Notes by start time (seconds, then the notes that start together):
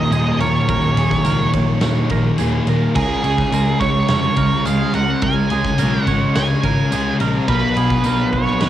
Already playing: D#2 A#2 D#3 F#3 A#3 D#4 A#4 C#5 D#5
0.11 D#1 D#2 A#2 D#3 G#4 D#5, ride, tambourine
0.39 D#1 D#3 A#4 C#5, ride
0.44 A#2
0.69 D#1 D#2 A#2 D#3 A#4, kick, ride
0.95 D#1 D#3 G#4, ride
1.00 A#2
1.11 kick, snare
1.25 C#2 D#2 A#2 D#3 A#4, ride, tambourine
1.53 A#1 A#2 D#3 C#5, kick, ride
1.81 D#1 D#2 A#2 D#3 C#5, snare, ride
2.10 A#1 A#2 D#3 A#4, kick, ride
2.38 D#1 D#2 A#2 D#3 G#4, ride, tambourine
2.67 D#1 A#2 D#3 A#4, ride
2.95 C#2 C#3 G#3 C#4 F4 G#4 A#4, kick, crash
3.24 C#2 G#3 C#4 G#4, ride
3.38 kick, snare
3.51 C#2 C#3 G#3 C#4 A#4, ride, tambourine
3.80 C#2 G#3 C#4 C#5, kick, ride
4.08 F1 C#3 G#3 C#4 C#5, snare, ride
4.37 C#2 G#3 C#4 A#4, kick, ride
4.65 C#2 C#3 G#3 C#4 G#4 F5, ride, tambourine
4.94 C#2 G#3 C#4 A#4 F#5, ride
5.22 C#2 C#3 G#3 A#4 G#5, kick, ride
5.26 C#4
5.50 C#2 C#4 G#4, ride
5.54 G#3
5.65 kick, snare
5.78 B1 C#3 G#3 A#4, ride, tambourine
5.82 C#4
6.03 G#1 F#5, kick, ride
6.07 G#3 C#4 C#5
6.35 C#2 C#3 G#3 C#4 C#5 G#5, snare, ride
6.63 G#1 G#3 C#4 A#4, kick, ride
6.92 C#2 C#3 G#3 C#4 G#4, ride, tambourine
7.20 A#1 G#3 C#4 A#4, ride
7.48 B1 B2 F#3 B3 D#4 F#4 A#4 B4, kick, ride
7.76 B1 F#3 B3 G#4, ride
7.90 kick, snare
8.04 B1 B2 F#3 B3 A#4, ride, tambourine
8.32 B1 F#3 B3 B4 C#5, kick, ride
8.60 D#2 B2 F#3 B3 B4, snare, ride